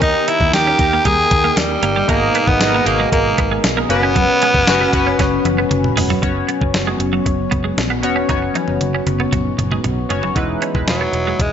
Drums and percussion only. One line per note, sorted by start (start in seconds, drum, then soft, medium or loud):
0.02 kick loud
0.02 closed hi-hat medium
0.28 closed hi-hat medium
0.41 kick medium
0.53 snare loud
0.53 closed hi-hat medium
0.53 tambourine medium
0.79 kick medium
0.79 closed hi-hat medium
1.05 kick medium
1.05 closed hi-hat medium
1.31 kick loud
1.31 closed hi-hat medium
1.57 snare loud
1.57 closed hi-hat medium
1.57 tambourine medium
1.83 closed hi-hat medium
2.09 kick loud
2.09 closed hi-hat medium
2.35 closed hi-hat medium
2.47 kick medium
2.61 snare loud
2.61 closed hi-hat medium
2.61 tambourine medium
2.86 closed hi-hat medium
3.12 kick medium
3.12 closed hi-hat medium
3.38 kick loud
3.38 closed hi-hat medium
3.64 snare loud
3.64 closed hi-hat medium
3.64 tambourine medium
3.90 closed hi-hat medium
4.16 kick loud
4.16 closed hi-hat medium
4.42 closed hi-hat medium
4.54 kick medium
4.67 snare loud
4.67 closed hi-hat medium
4.67 tambourine medium
4.93 kick loud
4.93 closed hi-hat medium
5.19 kick medium
5.19 snare medium
5.19 closed hi-hat medium
5.45 closed hi-hat medium
5.45 high tom medium
5.71 closed hi-hat medium
5.71 mid tom medium
5.84 mid tom medium
5.97 floor tom loud
5.97 open hi-hat medium
6.10 floor tom loud
6.23 kick loud
6.23 closed hi-hat medium
6.49 closed hi-hat medium
6.61 kick medium
6.74 snare loud
6.74 closed hi-hat medium
7.00 closed hi-hat medium
7.26 kick medium
7.26 closed hi-hat medium
7.52 kick medium
7.52 closed hi-hat medium
7.78 snare loud
7.78 closed hi-hat medium
8.03 closed hi-hat medium
8.29 kick loud
8.29 closed hi-hat medium
8.29 high tom soft
8.55 closed hi-hat medium
8.55 high tom medium
8.68 high tom medium
8.81 closed hi-hat medium
8.81 mid tom medium
9.07 closed hi-hat medium
9.07 mid tom medium
9.20 mid tom medium
9.33 kick medium
9.33 closed hi-hat medium
9.33 mid tom medium
9.59 closed hi-hat medium
9.59 mid tom medium
9.72 mid tom medium
9.84 closed hi-hat medium
9.84 floor tom medium
10.10 closed hi-hat medium
10.10 floor tom loud
10.23 floor tom medium
10.36 kick loud
10.36 closed hi-hat medium
10.62 closed hi-hat medium
10.75 kick medium
10.88 snare loud
10.88 closed hi-hat medium
11.13 closed hi-hat medium
11.39 kick medium
11.39 closed hi-hat medium